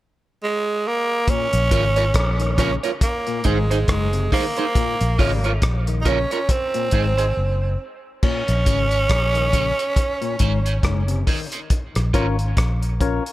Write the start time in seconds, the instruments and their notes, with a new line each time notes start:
0.43 tenor saxophone G#3
0.87 tenor saxophone A#3
1.28 clav A#2, tenor saxophone C#4, kick, closed hi-hat
1.53 fingered electric bass A#1, closed hi-hat
1.71 fingered electric bass G#1, clav C#3, clean electric guitar F4 A#4 C#5, kick, closed hi-hat
1.96 clean electric guitar F4 A#4 C#5, closed hi-hat
2.14 fingered electric bass A#1, kick, cross-stick, closed hi-hat
2.40 clav D#3, closed hi-hat
2.58 clav C#3, tenor saxophone C#4, clean electric guitar F4 A#4 C#5, kick, closed hi-hat
2.83 clean electric guitar F4 A#4 C#5, closed hi-hat
3.01 tenor saxophone A#3, kick, closed hi-hat
3.27 clav A#2, closed hi-hat
3.44 fingered electric bass G#1, clav G#2, tenor saxophone G#3, clean electric guitar D#4 G#4 C5, kick, closed hi-hat
3.71 clean electric guitar D#4 G#4 C5, closed hi-hat
3.88 fingered electric bass F#1, clav G#2, tenor saxophone G#3, kick, cross-stick, closed hi-hat
4.13 clav C3, closed hi-hat
4.32 clav D#3, tenor saxophone A#3, clean electric guitar D#4 G#4 C5, kick, open hi-hat
4.57 clean electric guitar D#4 G#4 C5, closed hi-hat
4.75 clav A#2, kick, closed hi-hat
5.01 fingered electric bass A#1, closed hi-hat
5.19 fingered electric bass G#1, clav C#3, clean electric guitar F4 A#4 C#5, kick, open hi-hat
5.44 clean electric guitar F4 A#4 C#5, closed hi-hat
5.62 fingered electric bass A#1, kick, cross-stick, closed hi-hat
5.87 clav D#3, closed hi-hat
6.02 tenor saxophone D#4, clean electric guitar F4, closed hi-hat
6.06 clav C#3, tenor saxophone C#4, clean electric guitar A#4 C#5, kick
6.31 clean electric guitar F4 A#4 C#5, closed hi-hat
6.49 tenor saxophone C4, kick, closed hi-hat
6.74 clav A#2, closed hi-hat
6.91 fingered electric bass G#1, clav G#2, clean electric guitar D#4 G#4 C5, kick, closed hi-hat
7.18 clean electric guitar D#4 G#4 C5, closed hi-hat
7.37 fingered electric bass F#1
8.23 clav A#2, tenor saxophone C#4, kick, crash
8.48 fingered electric bass A#1, closed hi-hat
8.66 fingered electric bass G#1, clav C#3, synth stab C#4 F4 A#4 C#5, clean electric guitar F4 A#4 C#5, kick, closed hi-hat
8.91 clean electric guitar F4 A#4 C#5, closed hi-hat
9.09 fingered electric bass A#1, kick, cross-stick, closed hi-hat
9.35 clav D#3, closed hi-hat
9.53 clav C#3, synth stab C#4 F4 A#4 C#5, clean electric guitar F4 A#4 C#5, kick, closed hi-hat
9.78 clean electric guitar F4 A#4 C#5, closed hi-hat
9.96 kick, closed hi-hat
10.21 clav A#2, closed hi-hat
10.39 fingered electric bass G#1, clav G#2, synth stab C4 D#4 G#4 C5, clean electric guitar D#4 G#4 C5, kick, closed hi-hat
10.66 clean electric guitar D#4 G#4 C5, closed hi-hat
10.83 fingered electric bass F#1, clav G#2, kick, cross-stick, closed hi-hat
11.08 clav C3, closed hi-hat
11.27 clav D#3, synth stab C4 D#4 G#4 C5, clean electric guitar D#4 G#4 C5, kick, open hi-hat
11.52 clean electric guitar D#4 G#4 C5, closed hi-hat
11.70 kick, closed hi-hat
11.95 fingered electric bass A#1, cross-stick, closed hi-hat
12.14 fingered electric bass G#1, synth stab C#4 F4 A#4 C#5, clean electric guitar F4 A#4 C#5, kick, closed hi-hat
12.39 closed hi-hat
12.57 fingered electric bass A#1, kick, cross-stick, closed hi-hat
12.83 closed hi-hat
13.00 synth stab C#4 F4 A#4 C#5, kick, closed hi-hat
13.26 closed hi-hat